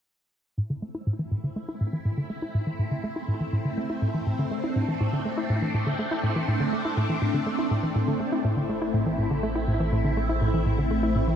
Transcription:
0.58 A2 A3 C4 E4
0.70 D3
0.82 A3
0.95 E4
1.07 A2
1.19 E3
1.31 A2
1.44 D3
1.56 A3
1.69 E4
1.81 A2
1.93 E3
2.05 A2
2.18 D3
2.30 A3
2.42 E4
2.55 A2
2.67 E3
2.79 A2
2.91 D3
3.04 A3
3.16 E4
3.28 A2
3.41 E3
3.53 A2
3.65 D3
3.78 A3
3.90 E4
4.02 A2
4.14 E3
4.27 A2
4.39 D3
4.51 A3 D4
4.64 E4
4.76 A2
4.88 E3
5.01 A2
5.13 D3
5.25 A3
5.37 E4
5.50 A2
5.62 E3
5.74 A2
5.87 D3
5.99 A3
6.11 E4
6.24 A2
6.36 E3
6.48 A2
6.60 D3
6.73 A3
6.85 E4
6.97 A2
7.10 E3
7.22 A2
7.34 D3
7.46 A3
7.59 E4
7.71 A2
7.83 E3
7.96 A2
8.08 D3
8.20 A3
8.32 E4
8.45 A1 A2 A3 C4 E4
8.57 D3
8.69 A3
8.82 E4
8.94 A2
9.06 E3
9.19 A2
9.31 D3
9.43 A3
9.55 E4
9.68 A2
9.80 E3
9.92 A2
10.05 D3
10.17 A3
10.29 E4
10.41 A2
10.54 E3
10.66 A2
10.78 D3
10.91 A3
11.03 E4
11.15 A2
11.28 E3

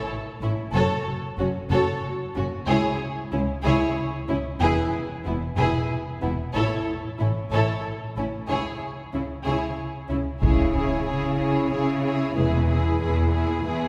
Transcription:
0.41 A1 A2 C#4 E4
0.73 F#1 F#2 F#4 A4 C#5
1.38 F#1 F#2 C#4 F#4
1.71 F#1 F#2 F#4 A4 C#5
2.35 F#1 F#2 C#4 F#4
2.67 C#2 E4 G#4 C#5
3.32 C#2 C#4 E4
3.65 C#2 E4 G#4 C#5
4.29 C#2 C#4 E4
4.61 E1 E2 E4 G#4 B4
5.25 E1 E2 B3 E4
5.57 E1 E2 E4 G#4 B4
6.22 E1 E2 B3 E4
6.54 A1 A2 E4 A4 C#5
7.19 A1 A2 C#4 E4
7.51 A1 A2 E4 A4 C#5
8.16 A1 A2 C#4 E4
8.48 C#2 C#3 E4 G#4 C#5
9.13 C#2 C#3 C#4 E4
9.46 C#2 C#3 E4 G#4 C#5
10.09 C#2 C#3 C#4 E4
10.42 C#2 C#3 G#3 E4 G#4 C#5, taiko, impact
10.75 E4 G#4 C#5
11.07 C#3 E4 G#4 C#5
11.38 E4 G#4 C#5
11.71 C#3 E4 G#4 C#5
12.04 E4 G#4 C#5
12.35 E1 E2 G#3 E4 G#4 B4
12.69 E4 G#4 B4
13.00 E2 E4 G#4 B4
13.33 E4 G#4 B4
13.65 E2 E4 G#4 B4

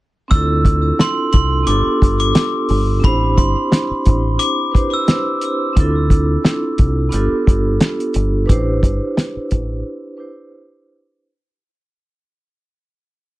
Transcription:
0.28 D2 C4 D4 E4 E6, kick, closed hi-hat
0.33 F4 A4
0.65 kick, closed hi-hat
0.99 C6, snare, closed hi-hat
1.33 C2 C6, kick, closed hi-hat
1.63 B3 D4 F4 D6, closed hi-hat
1.68 G1 G4 A4
2.02 G1, kick, closed hi-hat
2.20 D6, closed hi-hat
2.35 snare, closed hi-hat
2.69 G1, open hi-hat
3.00 A1 C4 D4 E4, kick, closed hi-hat
3.05 G4 C5 B5
3.37 G1 C6, kick, closed hi-hat
3.72 snare, closed hi-hat
3.91 muted fingered electric bass stroke
4.06 A1, kick, closed hi-hat
4.39 D6, closed hi-hat
4.71 D4 E4 G4 B4 C5, kick
4.76 closed hi-hat
4.94 E6
5.08 snare, closed hi-hat
5.41 closed hi-hat
5.73 D2 C4 D4 E4, kick, closed hi-hat
5.78 F4 A4
6.10 kick, closed hi-hat
6.45 snare, closed hi-hat
6.78 C2, kick, closed hi-hat
7.09 B3 D4 F4, closed hi-hat
7.13 G1 G4 A4
7.47 G1, kick, closed hi-hat
7.81 snare, closed hi-hat
8.00 closed hi-hat
8.14 G1, closed hi-hat
8.46 A1 D4 E4 B4, kick, closed hi-hat
8.51 G4 C5
8.83 G1, kick, closed hi-hat
9.17 snare, closed hi-hat
9.36 muted fingered electric bass stroke
9.51 A1, kick, closed hi-hat
10.17 D4 E4 G4 B4 C5

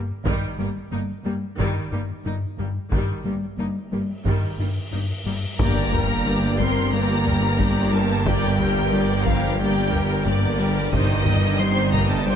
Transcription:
Already playing: G2 A#3
0.25 G1 G2 D#3 G3, taiko
0.58 G1 G2 G3 A#3
0.92 G1 G2 G3 A#3 D#4
1.25 G1 G2 G3 A#3
1.58 G1 G2 D#3 G3, taiko
1.92 G1 G2 G3 A#3 D#4
2.25 G1 G2 A#3 D#4
2.58 G1 G2 G3 A#3
2.92 G1 G2 D#3 G3, taiko, cymbal swell
3.25 G1 G2 G3 A#3
3.58 G1 G2 G3 A#3 D#4
3.92 G1 G2 G3 A#3
4.25 G1 G2 D#3 G3, taiko
4.59 G1 G2 G3 A#3 D#4
4.93 G1 G2 A#3 D#4
5.26 G1 G2 G3 A#3
5.59 G1 G2 G3 A#3 G4 A#4 D5 A#5, taiko, impact
5.92 G2 G3 A#3 G4 A#4, taiko low
6.26 G3 A#3 D4 G4 A#4 D5
6.59 G2 G3 C4 G4 A#4 C6, taiko
6.93 G3 A#3 G4 A#4 D5 A#5
7.26 G3 G4 A#4, taiko low
7.59 G2 G3 A#3 G4 A#4 D5, taiko
7.92 G3 A#3 G4 A#4 A5
8.26 G2 G3 A#3 G4 A#4 D5 G5, taiko
8.59 G2 G3 A#3 G4 A#4, taiko low
8.92 G3 A#3 D4 G4 A#4 D5
9.25 G2 F3 G3 G4 A#4 F5, taiko
9.58 G3 A#3 G4 A#4 D5 G5
9.92 G3 G4 A#4, taiko low
10.26 G2 D3 G3 A#3 G4 A#4 D5, taiko
10.59 G3 G4 A#4
10.92 G1 G2 C3 D#3 D#4 G4 C5 D#5, taiko
11.26 G2 D#3 G3 D#4 G4 D#5, taiko low
11.58 D#3 G3 C4 D#4 G4 C5 C6
11.92 G2 C3 G3 A#3 D#4 G4 D#5 A#5, taiko
12.10 A3 A5
12.26 D#3 G3 D#4 G4 C5 G5

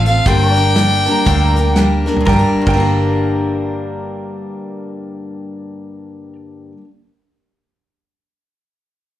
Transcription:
Already playing: A1 A4 C5
0.06 C4 F4 A4 F5, closed hi-hat
0.26 G1 G2 D3 G3 A#3 D4 A4 A#4 C5 G5, kick, closed hi-hat
0.47 A#4
0.53 D4 A#4 D5, closed hi-hat
0.58 G3 A#3
0.75 G3 A#3 D4 A#4, snare, closed hi-hat
1.06 G3 A#3 D4 A#4 A5, closed hi-hat
1.11 A#5
1.25 D2 G2 D3 G3 A#3 D4 A#4 G5, kick, closed hi-hat
1.44 A#5
1.56 G3 A#3 D4 A#4, closed hi-hat
1.60 G5
1.73 G3 F#5, snare, closed hi-hat
1.77 A#3 D4 A#4 G5
2.06 G3 A#3 D4 A#4, snare
2.17 G2, floor tom
2.25 G1 D3 G3 A#4 D5 G5, kick, snare
2.33 A#3 D4
2.39 A#4
2.61 G2
2.66 G1 D3 A#4 G5, kick, crash
2.70 G3 A#3
2.77 D4 A#4

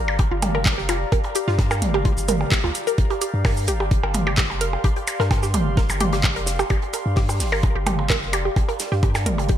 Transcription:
Already playing: G1 G4 D5 F5 A#5
0.08 percussion blips
0.19 G4, kick, closed hi-hat, percussion blips
0.31 G1 F4
0.42 closed hi-hat, mid tom, percussion blips
0.55 A#4, percussion blips
0.65 kick, snare, clap, closed hi-hat
0.78 F1 G4, snare
0.89 F4, closed hi-hat, percussion blips
1.12 G1 A#4, kick, closed hi-hat, percussion blips
1.24 closed hi-hat, percussion blips
1.35 G4, closed hi-hat, shaker
1.48 G2 F4, snare
1.58 kick, snare, closed hi-hat, percussion blips
1.71 A#4, snare, percussion blips, shaker
1.82 G1, closed hi-hat, mid tom
1.94 G4, percussion blips
2.05 F4, kick, closed hi-hat
2.17 G1, closed hi-hat, shaker
2.28 A#4, closed hi-hat, mid tom, percussion blips, shaker
2.41 percussion blips
2.52 G4, kick, snare, clap, closed hi-hat, percussion blips
2.64 D2 F4, snare, percussion blips
2.75 closed hi-hat, shaker
2.87 A#4, closed hi-hat, shaker
2.98 G1, kick, closed hi-hat
3.10 G4, closed hi-hat, percussion blips
3.21 G4, closed hi-hat, shaker
3.34 G2
3.45 A#4, kick, snare, open hi-hat, percussion blips
3.57 shaker
3.67 G1 G4, closed hi-hat, shaker
3.74 C6
3.80 G4, percussion blips
3.91 kick, closed hi-hat
4.03 G1 A#4, percussion blips
4.14 closed hi-hat, mid tom, percussion blips
4.27 G4, percussion blips
4.37 G4, kick, snare, clap, closed hi-hat
4.50 F1, snare, percussion blips
4.61 A#4, closed hi-hat
4.73 percussion blips
4.84 G1 G4, kick, closed hi-hat, percussion blips
4.96 G4, closed hi-hat
5.07 closed hi-hat, percussion blips, shaker
5.20 G2 A#4, snare, percussion blips
5.31 kick, snare, closed hi-hat, percussion blips
5.43 G4, snare, shaker
5.54 G1 G4, closed hi-hat, mid tom, percussion blips
5.77 A#4, kick, snare, closed hi-hat
5.89 G1, snare, percussion blips, shaker
6.00 G4, closed hi-hat, mid tom, percussion blips
6.13 G4, snare, closed hi-hat
6.24 kick, snare, clap, percussion blips
6.36 F1 A#4, closed hi-hat
6.46 snare, closed hi-hat, shaker
6.59 G4, snare, percussion blips, shaker
6.70 G1 G4, kick, closed hi-hat, percussion blips
6.82 closed hi-hat
6.93 A#4, closed hi-hat, percussion blips, shaker
7.06 G2
7.16 G4, kick, snare, open hi-hat
7.29 G4, percussion blips, shaker
7.40 G1, snare, closed hi-hat, open hi-hat, shaker
7.52 A#4, percussion blips
7.63 kick, closed hi-hat, percussion blips
7.76 G1 G4
7.86 G4, closed hi-hat, mid tom, percussion blips
7.99 percussion blips
8.10 A#4, kick, snare, clap, closed hi-hat
8.22 F1, snare
8.33 G4, closed hi-hat, percussion blips
8.45 G4
8.56 G1, kick, closed hi-hat, percussion blips
8.69 A#4, closed hi-hat, percussion blips
8.79 snare, closed hi-hat, shaker
8.92 G2 G4, snare
9.03 G4, kick, closed hi-hat, percussion blips
9.14 snare, closed hi-hat, percussion blips, shaker
9.26 G1 A#4, closed hi-hat, mid tom
9.38 closed hi-hat, percussion blips
9.49 G4, kick, closed hi-hat

